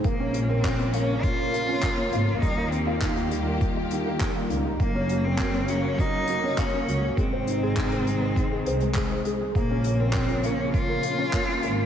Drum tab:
HH |x-x-xxx-x-x-x-x-|x-x-xxx-x-x-x-x-|x-x-xxx-x-x-x-x-|x-x-xxx-x-xxx-x-|
CP |----x-------x---|----x-------x---|----x-------x---|----x-------x---|
BD |o---o---o---o---|o---o---o---o---|o---o---o---o---|o---o---o---o---|

HH |x-x-xxx-x-x-x-x-|
CP |----x-------x---|
BD |o---o---o---o---|